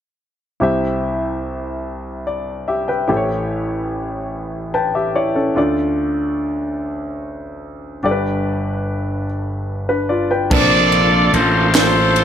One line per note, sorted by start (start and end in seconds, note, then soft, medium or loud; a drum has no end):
0.60 3.05 C2 soft
0.60 3.05 C3 soft
0.60 3.04 E4 soft
0.60 2.23 G4 soft
0.60 2.23 C5 soft
0.60 2.24 E5 medium
2.27 2.66 D5 soft
2.68 2.88 G4 soft
2.68 2.87 E5 soft
2.88 3.28 B4 soft
2.88 3.27 G5 soft
3.08 5.53 A1 soft
3.08 5.53 A2 soft
3.08 4.70 E4 medium
3.08 4.71 G4 soft
3.08 4.71 A4 soft
3.08 3.16 C5 soft
3.16 4.75 C#5 medium
4.74 4.94 B4 soft
4.74 4.94 G5 soft
4.74 5.12 A5 medium
4.95 5.14 G4 soft
4.95 5.14 E5 soft
5.15 5.35 E4 soft
5.15 5.35 C#5 soft
5.15 5.54 D5 medium
5.36 5.75 C#4 soft
5.36 5.55 A4 soft
5.55 8.00 D2 medium
5.55 8.00 D3 soft
5.55 7.99 D4 soft
5.55 8.00 F4 soft
5.55 8.00 A4 soft
5.55 8.01 D5 medium
8.03 10.47 G1 medium
8.03 10.47 G2 soft
8.03 9.25 D4 medium
8.03 9.25 G4 soft
8.03 8.11 A4 soft
8.03 9.26 D5 medium
8.11 9.29 B4 soft
9.89 10.09 D4 soft
9.89 10.09 B4 soft
10.09 10.29 F4 soft
10.09 10.29 D5 soft
10.31 10.51 B4 soft
10.31 10.70 G5 soft
10.50 11.30 A#1 medium
10.50 11.70 C3 medium
10.50 12.24 A#3 medium
10.50 12.24 D4 medium
10.50 12.24 F4 medium
10.50 11.71 F4 medium
10.50 11.71 A4 medium
10.50 10.58 B4 medium
10.50 12.24 C5 medium
10.50 11.30 D5 loud
10.50 12.24 A5 medium
10.50 kick loud
10.50 crash medium
10.59 12.24 C5 medium
10.92 ride soft
11.33 12.24 A1 medium
11.33 11.75 C5 medium
11.33 ride soft
11.75 12.24 F4 medium
11.75 12.24 A4 medium
11.75 12.24 C5 loud
11.75 snare loud
11.75 clap loud
11.75 ride medium
12.16 ride soft